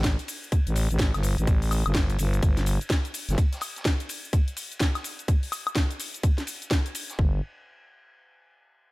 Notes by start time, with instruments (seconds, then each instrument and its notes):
Already playing: fm bass A1
0.04 kick, snare, closed hi-hat, ride, cabasa
0.19 closed hi-hat, cabasa
0.28 open hi-hat, ride, cabasa
0.44 cabasa
0.52 kick, closed hi-hat, ride, cabasa
0.67 fm bass A1, closed hi-hat, cabasa
0.75 open hi-hat, ride, cabasa
0.91 fm bass A1, closed hi-hat, cabasa
0.99 kick, snare, closed hi-hat, ride, cabasa
1.14 fm bass G1, snare, closed hi-hat, cabasa, high woodblock
1.23 open hi-hat, ride, cabasa
1.38 fm bass A1, closed hi-hat, cabasa
1.47 kick, closed hi-hat, ride, cabasa
1.62 open hi-hat, cabasa
1.71 open hi-hat, ride, cabasa, high woodblock
1.86 fm bass G1, closed hi-hat, cabasa, high woodblock
1.95 kick, snare, closed hi-hat, ride, cabasa
2.10 closed hi-hat, cabasa
2.19 fm bass G1, open hi-hat, ride, cabasa
2.33 closed hi-hat, cabasa
2.43 fm bass G1, kick, closed hi-hat, ride, cabasa
2.57 snare, closed hi-hat, ride, cabasa
2.66 open hi-hat, ride, cabasa
2.81 closed hi-hat, cabasa
2.90 kick, snare, closed hi-hat, ride, cabasa
3.05 closed hi-hat, cabasa
3.14 open hi-hat, ride, cabasa
3.29 fm bass G1, snare, closed hi-hat, cabasa
3.38 kick, closed hi-hat, ride, cabasa
3.52 snare, closed hi-hat, cabasa
3.61 open hi-hat, ride, cabasa, high woodblock
3.76 snare, closed hi-hat, cabasa
3.85 kick, snare, closed hi-hat, ride, cabasa
4.00 closed hi-hat, cabasa
4.09 open hi-hat, ride, cabasa
4.25 cabasa
4.33 kick, closed hi-hat, ride, cabasa
4.48 closed hi-hat, cabasa
4.56 open hi-hat, ride, cabasa
4.72 closed hi-hat, cabasa
4.80 kick, snare, closed hi-hat, ride, cabasa
4.95 snare, closed hi-hat, cabasa, high woodblock
5.04 open hi-hat, ride, cabasa
5.19 closed hi-hat, cabasa
5.28 kick, closed hi-hat, ride, cabasa
5.43 open hi-hat, cabasa
5.52 open hi-hat, ride, cabasa, high woodblock
5.67 closed hi-hat, cabasa, high woodblock
5.75 kick, snare, closed hi-hat, ride, cabasa
5.91 closed hi-hat, cabasa
6.00 open hi-hat, ride, cabasa
6.14 closed hi-hat, cabasa
6.23 kick, closed hi-hat, ride, cabasa
6.38 snare, closed hi-hat, ride, cabasa
6.47 open hi-hat, ride, cabasa
6.62 closed hi-hat, cabasa
6.71 kick, snare, closed hi-hat, ride, cabasa
6.86 closed hi-hat, cabasa
6.95 open hi-hat, ride, cabasa
7.10 snare, closed hi-hat, cabasa
7.19 fm bass G1, kick